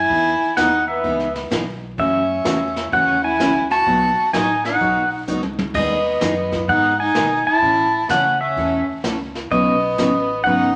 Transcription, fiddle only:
Already playing: E4
0.58 D#4
0.89 B3
1.99 C#4
2.93 C#4
3.23 E4
3.70 F#4
4.34 D#4
4.65 D#4
5.76 B3
6.70 D#4
7.00 D#4
7.48 E4
8.09 C#4
8.41 C#4
9.51 B3
10.45 D#4

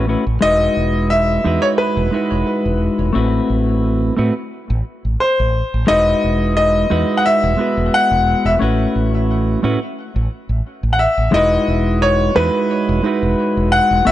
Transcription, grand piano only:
0.42 D#5
1.10 E5
1.62 C#5
1.78 B4
5.20 C5
5.88 D#5
6.57 D#5
7.17 F#5
7.26 E5
7.94 F#5
8.46 E5
10.93 F#5
10.99 E5
11.34 D#5
12.02 C#5
12.36 B4
13.72 F#5
14.07 E5

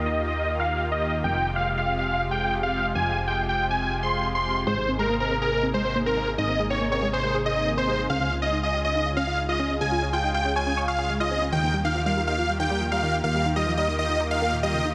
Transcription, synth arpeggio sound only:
4.67 G#3
4.77 G#2
4.88 C4
4.99 G#3
5.10 A#3
5.20 C4
5.31 C4
5.42 G#4
5.52 A#3
5.63 C4
5.74 G#3
5.85 C4
5.95 A#3
6.06 C4
6.17 G#3
6.27 G#3
6.38 D#4
6.49 C4
6.59 G#3
6.70 C4
6.81 A#3
6.92 C4
7.02 G#3
7.13 G#4
7.24 G#3
7.34 G#4
7.45 G#4
7.56 D#4
7.67 D#3
7.77 C4
7.88 G3
7.99 G#3
8.09 C#4
8.20 C#3
8.31 F4
8.42 C#4
8.52 D#4
8.63 F4
8.74 G4
8.84 C#5
8.95 D#4
9.06 F4
9.17 C#4
9.27 F4
9.38 D#4
9.49 F4
9.59 C#4
9.70 C#4
9.81 G#4
9.92 F4
10.02 C#4
10.13 F4
10.24 D#4
10.34 F4
10.45 C#4
10.56 C#5
10.67 C#4
10.77 C#5
10.88 C#5
10.99 G#4
11.09 G#3
11.20 F4
11.31 C4
11.42 C#4
11.52 D#3
11.63 D#2
11.74 G3
11.84 D#3
11.95 F3
12.06 G3
12.17 G3
12.27 D#4
12.38 F3
12.49 G3
12.60 D#3
12.70 G3
12.81 F3
12.92 G3
13.03 D#3
13.13 D#3
13.24 A#3
13.35 G3
13.45 D#3
13.56 G3
13.67 F3
13.77 G3
13.88 D#3
13.99 D#4
14.10 D#3
14.20 D#4
14.31 D#4
14.42 A#3
14.52 A#2
14.63 G3
14.74 C#3
14.85 D#3

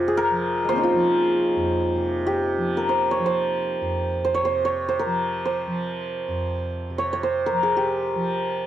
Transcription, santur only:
Already playing: F4 A#4 C5
0.08 G#4
0.17 A#4
0.64 G#3
0.69 A#3 C4 C5
0.76 C#4 D#4
0.83 F4
2.27 G4
2.77 A#4
2.89 C5
3.11 C#5
3.26 C5
4.25 C5
4.34 C#5
4.45 C5
4.65 C#5
4.89 C5
4.99 A#4
5.45 C5
6.98 C#5
7.13 C#5
7.23 C5
7.46 A#4
7.63 G#4
7.77 G4

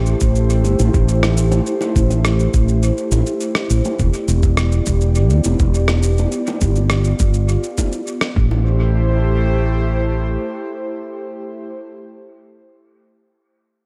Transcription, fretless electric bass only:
Already playing: A1
0.22 A1
0.66 G1
0.80 A1
0.94 A1
1.96 A1
2.54 A1
3.12 A1
3.70 A1
4.00 E1
4.28 E1
4.87 E1
5.30 D2
5.45 E1
5.60 E1
6.62 G1
7.20 G1
8.36 A1

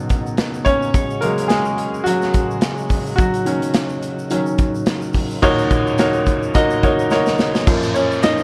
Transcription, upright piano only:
Already playing: B2 D#3 F#3 D#4 D#5
0.65 C#4 C#5
1.21 C#3 F#3 G#3 A#3 A#4
1.48 G#3 G#4
2.04 F#3 F#4
3.16 F#3 F#4
3.45 D#3 F#3 C#4
4.30 D#3 F#3 C#4
5.42 D#2 A#2 D#4 F#4 A#4 C#5
5.99 D#4 F#4 A#4 C#5
6.54 D#4 F#4 A#4 D#5
6.83 D#4 F#4 A#4 C#5
7.11 D#4 F#4 A#4 C#5
7.67 F#2 F3 A#3
7.94 C#4 C#5
8.23 D#4 D#5

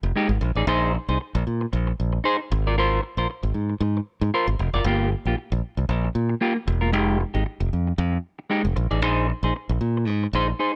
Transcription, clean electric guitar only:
0.04 muted clean electric guitar stroke
0.16 G#3 D#4 G4
0.30 muted clean electric guitar stroke
0.42 muted clean electric guitar stroke
0.56 D#4 G#4 D5
0.68 D#4 G#4 C5
0.95 muted clean electric guitar stroke
1.09 D#4 G#4 C5
1.20 muted clean electric guitar stroke
1.35 muted clean electric guitar stroke
1.61 muted clean electric guitar stroke
1.73 muted clean electric guitar stroke
1.87 muted clean electric guitar stroke
2.13 muted clean electric guitar stroke
2.24 D#4 G#4 C5
2.39 muted clean electric guitar stroke
2.51 muted clean electric guitar stroke
2.67 F4 A#4 D5
2.78 F4 A#4 C5
3.02 muted clean electric guitar stroke
3.18 F4 A#4 C5
3.30 muted clean electric guitar stroke
3.43 muted clean electric guitar stroke
3.70 muted clean electric guitar stroke
3.81 muted clean electric guitar stroke
3.97 muted clean electric guitar stroke
4.23 muted clean electric guitar stroke
4.34 F4 A#4 C5
4.49 muted clean electric guitar stroke
4.59 muted clean electric guitar stroke
4.74 F4 A#4 D5
4.86 A#3 F4 G4
5.11 muted clean electric guitar stroke
5.27 A#3 F4 G4
5.37 muted clean electric guitar stroke
5.52 muted clean electric guitar stroke
5.79 muted clean electric guitar stroke
5.90 muted clean electric guitar stroke
6.05 muted clean electric guitar stroke
6.29 muted clean electric guitar stroke
6.41 A#3 F4 G4
6.56 muted clean electric guitar stroke
6.67 muted clean electric guitar stroke
6.81 A#3 F4 A#4
6.92 G#3 D#4 G4
7.20 muted clean electric guitar stroke
7.34 G#3 D#4 G4
7.46 muted clean electric guitar stroke
7.60 muted clean electric guitar stroke
7.87 muted clean electric guitar stroke
7.98 muted clean electric guitar stroke
8.12 muted clean electric guitar stroke
8.39 muted clean electric guitar stroke
8.50 G#3 D#4 G4
8.64 muted clean electric guitar stroke
8.76 muted clean electric guitar stroke
8.91 D#4 G#4 D5
9.03 D#4 G#4 C5
9.29 muted clean electric guitar stroke
9.44 D#4 G#4 C5
9.56 muted clean electric guitar stroke
9.71 muted clean electric guitar stroke
9.97 muted clean electric guitar stroke
10.10 muted clean electric guitar stroke
10.24 muted clean electric guitar stroke
10.35 D#4 G#4 C5
10.59 D#4 G#4 C5

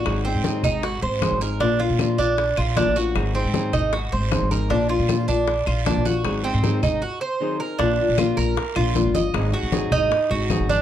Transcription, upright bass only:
0.05 G#1
0.35 G#2
0.64 G#1
1.02 G#1
1.31 G#1
1.60 A#1
1.90 A#2
2.19 A#1
2.58 A#1
2.87 A1
3.15 G#1
3.45 G#2
3.74 G#1
4.13 G#1
4.41 G#1
4.71 A#1
4.99 A#2
5.28 A#1
5.67 A#1
5.96 A#1
6.25 G#1
6.54 G#2
6.83 G#1
7.79 A#1
8.09 A#1
8.37 A#1
8.76 A#1
9.05 G1
9.34 G#1
9.63 G#1
9.92 G#1
10.30 G#1
10.59 G#1

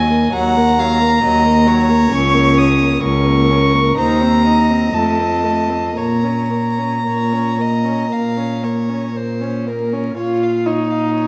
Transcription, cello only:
Already playing: D#2
0.33 D#2
1.24 D#2
2.12 C#2
3.03 C#2
3.97 D#2
4.93 F2
5.98 A#2
7.06 A#2
8.13 A#2
9.17 A#2
10.19 A#2

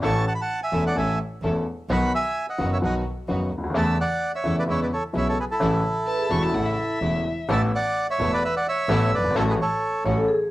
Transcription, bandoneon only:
0.04 A5 C#6
0.27 F#5 A5
0.35 B5
0.41 F#5 A5
0.63 E5 G#5
0.87 D5 F#5
0.98 E5 G#5
1.92 F#5 B5
2.15 E5 G#5
2.50 D#5 F#5
2.73 C#5 E5
2.85 D#5 F#5
3.77 E5 A5
4.01 D5 F#5
4.35 C#5 E5
4.59 B4 D5
4.70 C#5 E5
4.83 B4 D5
4.93 A4 C#5
5.17 C#5 E5
5.29 A4 C#5
5.40 G#4 B4
5.51 E4 A4
7.52 E5 A5
7.75 D5 F#5
8.10 C#5 E5
8.33 B4 D5
8.45 B4 E5
8.57 D5 F#5
8.69 C#5 E5
9.15 B4 D5
9.38 A4 C#5
9.49 G#4 B4
9.61 A4 C#5

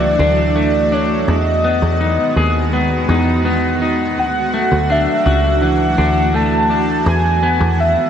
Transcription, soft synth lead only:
Already playing: D5
0.94 C#5
1.29 D#5
4.19 F#5
4.92 E5
5.64 F#5
6.36 A5
7.08 G#5
7.80 E5

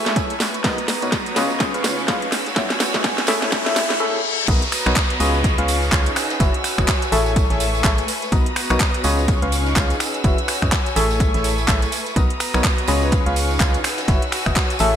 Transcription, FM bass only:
4.48 B1
4.86 B1
5.20 C#2
5.58 C#2
5.92 C#2
6.40 F#1
6.78 F#1
7.12 A1
7.50 A1
7.84 A1
8.32 B1
8.70 B1
9.04 C#2
9.42 C#2
9.76 C#2
10.24 F#1
10.62 F#2
10.96 A1
11.34 A1
11.68 A1
12.16 B1
12.54 B1
12.88 C#2
13.26 C#2
13.60 C#2
14.08 F#1
14.46 F#1
14.80 A1

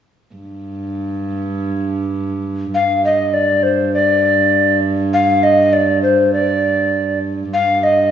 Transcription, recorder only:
2.74 F5
3.05 D#5
3.34 D5
3.63 C5
3.94 D5
5.13 F5
5.43 D#5
5.73 D5
6.03 C5
6.33 D5
7.53 F5
7.83 D#5

